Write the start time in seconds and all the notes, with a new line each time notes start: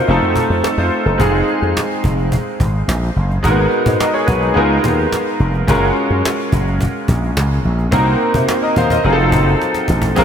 Already playing: F4 A#4 F#5
0.08 F1 A3 C4 D#4 F4 A4, cajon slap
0.22 F2, cajon slap
0.36 cajon bass
0.50 F2, cajon slap
0.64 D#4 A4, cajon slap
0.78 F2 F4 C5, cajon slap
0.91 cajon slap
1.06 F#1 D#4 A4, cajon slap
1.18 F1 G#3 C4 D#4 F4 G#4, cajon bass
1.48 cajon slap
1.62 F2, cajon slap
1.77 cajon slap
2.04 F1, cajon bass
2.19 cajon slap
2.32 cajon bass
2.46 cajon slap
2.60 G#1, cajon bass
2.75 cajon slap
2.88 A#1, cajon slap
3.16 F#1, cajon slap
3.30 cajon slap
3.43 G#1 G#3 A#3 D#4 F#4 A#4, cajon bass
3.50 B3
3.58 cajon slap
3.71 cajon slap
3.86 G#2, cajon bass
4.00 A#4 D#5, cajon slap
4.14 G#4 C#5
4.27 B1 F#4 B4, cajon bass
4.41 D#4 G#4, cajon slap
4.54 C#2 G#3 B3 D#4 F4 A#4, cajon slap
4.70 cajon slap
4.84 D#2, cajon bass
4.98 cajon slap
5.12 cajon slap
5.40 F1, cajon slap
5.54 cajon slap
5.67 F#1 G#3 C#4 F4 F#4 A#4, cajon bass
5.82 cajon slap
5.96 cajon slap
6.10 F#2, cajon slap
6.25 cajon slap
6.52 F#1, cajon bass
6.67 cajon slap
6.81 cajon bass
6.95 cajon slap
7.08 A#1, cajon bass
7.23 cajon slap
7.37 C#2, cajon slap
7.64 A#1, cajon slap
7.78 cajon slap
7.91 C2 A#3 C4 D#4 F#4 A#4, cajon bass
8.06 cajon slap
8.20 cajon slap
8.34 C3, cajon bass
8.48 cajon slap
8.63 A#4 D#5
8.76 D#2 C5 F5, cajon bass
8.90 A#4 D#5, cajon bass, cajon slap
9.03 F1 F#3 C4 D#4 F4 G#4, cajon slap
9.13 A4
9.20 cajon slap
9.32 F#1, cajon bass
9.60 cajon slap
9.74 cajon slap
9.88 A1, cajon bass
10.02 cajon bass
10.16 A#1 G#3 C4 C#4 F4 A#4, cajon bass